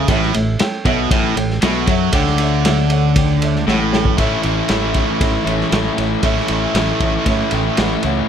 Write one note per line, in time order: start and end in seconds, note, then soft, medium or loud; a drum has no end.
0.08 0.32 A1 medium
0.08 0.33 A2 medium
0.08 0.29 A4 loud
0.08 0.30 C#5 loud
0.08 0.30 E5 loud
0.08 kick loud
0.08 ride medium
0.22 snare soft
0.34 0.59 A1 medium
0.34 0.55 A2 medium
0.34 0.55 A4 medium
0.34 0.55 C#5 medium
0.34 0.56 E5 medium
0.34 ride medium
0.59 0.80 A4 medium
0.59 0.81 C#5 medium
0.59 0.81 G5 loud
0.59 muted overdriven electric guitar stroke medium
0.59 muted distorted electric guitar stroke medium
0.59 muted fingered electric bass stroke soft
0.59 snare loud
0.59 ride medium
0.85 1.10 B1 loud
0.85 1.11 B2 loud
0.85 1.06 A4 loud
0.85 1.06 C#5 loud
0.85 1.07 E5 loud
0.85 kick loud
0.85 ride medium
1.10 1.35 A1 medium
1.10 1.36 A2 medium
1.10 1.31 A4 medium
1.10 1.32 C#5 medium
1.10 1.32 E5 medium
1.10 kick loud
1.10 ride loud
1.35 1.61 A1 medium
1.35 1.57 A2 medium
1.35 1.57 A4 medium
1.35 1.57 C#5 medium
1.35 1.58 G5 loud
1.35 ride medium
1.50 snare soft
1.62 1.87 B1 medium
1.62 1.87 B2 loud
1.62 1.83 A4 medium
1.62 1.83 C#5 medium
1.62 1.84 E5 medium
1.62 snare loud
1.62 ride medium
1.87 2.12 F#2 medium
1.87 2.13 F#3 loud
1.87 2.09 A4 loud
1.87 2.09 C#5 loud
1.87 2.10 E5 loud
1.87 kick loud
1.87 ride medium
2.13 3.63 D2 medium
2.13 3.66 D3 medium
2.13 2.34 A4 loud
2.13 2.34 C#5 loud
2.13 2.35 G5 loud
2.13 kick medium
2.13 ride loud
2.26 snare soft
2.38 2.60 A4 medium
2.38 2.60 C#5 medium
2.38 2.61 E5 medium
2.38 ride medium
2.65 2.85 A4 medium
2.65 2.86 C#5 medium
2.65 2.86 E5 medium
2.65 snare loud
2.65 ride medium
2.90 3.11 A4 loud
2.90 3.11 C#5 loud
2.90 3.12 F#5 loud
2.90 ride medium
3.16 3.37 A4 medium
3.16 3.37 C#5 medium
3.16 3.38 G5 medium
3.16 kick loud
3.16 ride medium
3.42 3.62 A4 medium
3.42 3.63 C#5 medium
3.42 3.63 E5 medium
3.42 ride medium
3.56 snare soft
3.67 4.15 A1 medium
3.67 4.16 A2 loud
3.67 3.88 A4 medium
3.67 3.88 C#5 medium
3.67 3.89 F#5 medium
3.67 3.92 G5 medium
3.67 snare medium
3.92 4.13 A4 loud
3.92 4.13 C#5 medium
3.92 4.14 G5 loud
3.92 4.17 A5 medium
3.92 snare medium
4.05 kick medium
4.17 4.35 A1 medium
4.17 4.68 A2 medium
4.17 4.69 E3 medium
4.17 4.45 A3 medium
4.17 4.44 C#4 medium
4.17 4.43 E4 medium
4.17 4.39 A4 loud
4.17 4.39 C#5 medium
4.17 4.40 E5 loud
4.17 kick loud
4.17 ride medium
4.43 4.60 A1 medium
4.43 4.69 A3 medium
4.43 4.70 C#4 medium
4.43 4.70 E4 medium
4.43 4.65 A4 medium
4.43 4.65 C#5 medium
4.43 4.65 E5 medium
4.43 ride medium
4.69 5.02 A1 medium
4.69 5.72 A2 medium
4.69 5.70 E3 medium
4.69 5.47 A3 medium
4.69 5.45 C#4 medium
4.69 5.44 E4 medium
4.69 4.90 A4 medium
4.69 4.91 C#5 medium
4.69 4.91 E5 medium
4.69 snare medium
4.69 ride medium
4.94 5.16 A4 medium
4.94 5.17 C#5 medium
4.94 5.17 E5 medium
4.94 kick medium
4.94 ride medium
5.21 5.37 A1 medium
5.21 5.42 A4 medium
5.21 5.42 C#5 medium
5.21 5.43 E5 loud
5.21 kick loud
5.21 ride medium
5.45 5.63 A1 medium
5.45 5.71 A3 medium
5.45 5.71 C#4 medium
5.45 5.72 E4 medium
5.45 5.68 A4 medium
5.45 5.68 C#5 medium
5.45 5.69 E5 medium
5.45 ride medium
5.61 snare soft
5.71 5.89 A1 medium
5.71 6.22 E3 medium
5.71 5.98 A3 medium
5.71 5.96 C#4 medium
5.71 5.95 E4 medium
5.71 5.93 A4 medium
5.71 5.94 C#5 medium
5.71 5.94 E5 medium
5.71 snare loud
5.71 ride medium
5.97 6.14 A1 medium
5.97 6.23 A3 medium
5.97 6.23 C#4 medium
5.97 6.23 E4 medium
5.97 6.18 A4 medium
5.97 6.19 C#5 medium
5.97 6.19 E5 medium
5.97 ride medium
6.22 6.40 A1 medium
6.22 6.73 A2 medium
6.22 6.74 E3 medium
6.22 6.50 A3 medium
6.22 6.49 C#4 loud
6.22 6.47 E4 medium
6.22 6.44 A4 loud
6.22 6.45 C#5 medium
6.22 6.45 E5 loud
6.22 kick loud
6.22 ride medium
6.38 snare soft
6.48 6.66 A1 medium
6.48 6.75 A3 medium
6.48 6.75 C#4 medium
6.48 6.75 E4 medium
6.48 6.71 A4 medium
6.48 6.71 C#5 medium
6.48 6.71 E5 medium
6.48 ride medium
6.74 6.91 A1 medium
6.74 7.78 A2 medium
6.74 7.76 E3 medium
6.74 7.53 A3 medium
6.74 7.51 C#4 loud
6.74 7.50 E4 medium
6.74 6.96 A4 medium
6.74 6.96 C#5 medium
6.74 6.97 E5 medium
6.74 snare loud
6.74 ride medium
7.00 7.17 A1 medium
7.00 7.22 A4 medium
7.00 7.23 C#5 medium
7.00 7.23 E5 medium
7.00 kick medium
7.00 ride medium
7.26 7.43 A2 medium
7.26 7.48 A4 loud
7.26 7.48 C#5 medium
7.26 7.49 E5 loud
7.26 kick loud
7.26 ride medium
7.51 7.69 A1 medium
7.51 7.77 A3 medium
7.51 7.78 C#4 medium
7.51 7.78 E4 medium
7.51 7.73 A4 medium
7.51 7.74 C#5 medium
7.51 7.74 G5 medium
7.51 ride medium
7.77 7.95 A1 medium
7.77 8.28 E3 medium
7.77 8.05 A3 medium
7.77 8.03 C#4 medium
7.77 8.02 E4 medium
7.77 8.00 A4 medium
7.77 8.00 C#5 medium
7.77 8.00 F#5 medium
7.77 snare loud
7.77 ride medium
8.03 8.20 C#2 medium
8.03 8.29 A3 medium
8.03 8.29 C#4 medium
8.03 8.28 E4 medium
8.03 8.25 A4 medium
8.03 8.26 C#5 medium
8.03 8.26 F#5 medium
8.03 ride medium